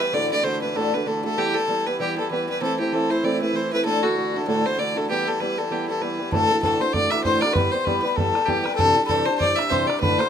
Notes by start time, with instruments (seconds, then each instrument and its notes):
Already playing: accordion E3 E4
0.00 steel-string acoustic guitar G3 B3 G4, fiddle B4
0.13 steel-string acoustic guitar D2 A2 D3 A3 D4 F#4, fiddle D5
0.30 steel-string acoustic guitar D3 A3 D4 F#4, fiddle D5
0.43 steel-string acoustic guitar D3 A3 D4 F#4, fiddle C5
0.61 steel-string acoustic guitar D3 A3 D4 F#4, fiddle B4
0.75 steel-string acoustic guitar D2 A2 D3 A3 D4 F#4, fiddle A4
0.93 steel-string acoustic guitar D3 A3 D4 F#4, fiddle B4
1.06 steel-string acoustic guitar D3 A3 D4 F#4, fiddle A4
1.23 steel-string acoustic guitar D3 A3 D4 F#4, fiddle A4
1.37 steel-string acoustic guitar E3 G3 B3 G4, accordion E3 E4, fiddle G4
1.54 steel-string acoustic guitar G3 B3 G4, fiddle A4
1.68 steel-string acoustic guitar E3 G3 B3 G4
1.86 steel-string acoustic guitar G3 B3 G4, fiddle B4
2.00 steel-string acoustic guitar E3 G3 B3 G4, fiddle G4
2.17 steel-string acoustic guitar G3 B3 G4, fiddle A4
2.30 steel-string acoustic guitar E3 G3 B3 G4, fiddle B4
2.48 steel-string acoustic guitar G3 B3 G4, fiddle B4
2.61 steel-string acoustic guitar E3 A3 C4 E4, fiddle A4
2.79 steel-string acoustic guitar A3 C4 E4, fiddle G4
2.92 steel-string acoustic guitar E3 A3 C4 E4, fiddle A4
3.10 steel-string acoustic guitar A3 C4 E4, fiddle C5
3.23 steel-string acoustic guitar E3 A3 C4 E4, fiddle D5
3.41 steel-string acoustic guitar A3 C4 E4, fiddle B4
3.53 steel-string acoustic guitar E3 A3 C4 E4, fiddle C5
3.72 steel-string acoustic guitar A3 C4 E4, fiddle B4
3.85 steel-string acoustic guitar D2 A2 D3 A3 D4 F#4, fiddle A4
4.02 steel-string acoustic guitar D3 A3 D4 F#4, fiddle F#4
4.16 steel-string acoustic guitar D3 A3 D4 F#4
4.34 steel-string acoustic guitar D3 A3 D4 F#4, fiddle A4
4.47 steel-string acoustic guitar D2 A2 D3 A3 D4 F#4, fiddle A4
4.64 steel-string acoustic guitar D3 A3 D4 F#4, fiddle C5
4.78 steel-string acoustic guitar D3 A3 D4 F#4, fiddle D5
4.96 steel-string acoustic guitar D3 A3 D4 F#4, fiddle A4
5.09 steel-string acoustic guitar E3 G3 B3 G4, fiddle G4
5.27 steel-string acoustic guitar G3 B3 G4, fiddle A4
5.40 steel-string acoustic guitar E3 G3 B3 G4, fiddle B4
5.58 steel-string acoustic guitar G3 B3 G4, fiddle A4
5.71 steel-string acoustic guitar E3 G3 B3 G4, fiddle G4
5.88 steel-string acoustic guitar G3 B3 G4, fiddle A4
6.01 steel-string acoustic guitar E3 G3 B3 G4, fiddle B4
6.19 steel-string acoustic guitar G3 B3 G4
6.32 steel-string acoustic guitar D2 A2 E3 A3 D4 F#4, fiddle A4, tin whistle A5, bodhran
6.49 steel-string acoustic guitar E3 A3 D4 F#4
6.62 steel-string acoustic guitar D2 A2 E3 A3 D4 F#4, fiddle A4, tin whistle A5, bodhran
6.80 steel-string acoustic guitar E3 A3 D4 F#4, fiddle C5, tin whistle C6
6.93 steel-string acoustic guitar E3 A3 D4 F#4, fiddle D5, tin whistle D6, bodhran
7.10 steel-string acoustic guitar E3 A3 D4 F#4, fiddle E5, bodhran
7.24 steel-string acoustic guitar D2 A2 E3 A3 D4 F#4, fiddle C5, tin whistle C6, bodhran
7.41 steel-string acoustic guitar E3 A3 D4 F#4, fiddle D5, tin whistle D6, bodhran
7.53 steel-string acoustic guitar E3 G3 B3 G4, fiddle B4, tin whistle B5 C6, bodhran
7.72 steel-string acoustic guitar G3 B3 G4, fiddle C5, tin whistle C6
7.85 steel-string acoustic guitar E3 G3 B3 G4, fiddle B4, tin whistle B5, bodhran
8.02 steel-string acoustic guitar G3 B3 G4, fiddle B4
8.07 tin whistle B5
8.16 steel-string acoustic guitar E3 G3 B3 G4, fiddle A4, tin whistle A5, bodhran
8.35 steel-string acoustic guitar G3 B3 G4, bodhran
8.46 steel-string acoustic guitar E3 G3 B3 G4, fiddle G4, tin whistle G5, bodhran
8.63 steel-string acoustic guitar B3 G4, fiddle B4, bodhran
8.68 steel-string acoustic guitar G3
8.76 steel-string acoustic guitar C3 E3, fiddle A4, bodhran
8.80 steel-string acoustic guitar G3 D4 G4, tin whistle A5
8.96 steel-string acoustic guitar G3 D4 G4
9.05 steel-string acoustic guitar C3, fiddle A4, tin whistle B5
9.09 steel-string acoustic guitar E3 G3 D4 G4, tin whistle A5, bodhran
9.25 steel-string acoustic guitar D4 G4, fiddle C5
9.30 steel-string acoustic guitar G3
9.38 steel-string acoustic guitar E3 G3, fiddle C5 D5, tin whistle D6, bodhran
9.42 steel-string acoustic guitar D4 G4
9.56 steel-string acoustic guitar D4 G4, fiddle E5, tin whistle E6, bodhran
9.60 steel-string acoustic guitar G3
9.69 steel-string acoustic guitar C3 E3 G3 D4 G4, fiddle C5, tin whistle C6, bodhran
9.87 steel-string acoustic guitar G3 D4 G4, fiddle D5, tin whistle D6, bodhran
10.00 steel-string acoustic guitar D2 A2 D3 A3 D4 F#4, fiddle B4, tin whistle B5, bodhran
10.18 steel-string acoustic guitar D3 A3 D4 F#4, fiddle C5, tin whistle C6, bodhran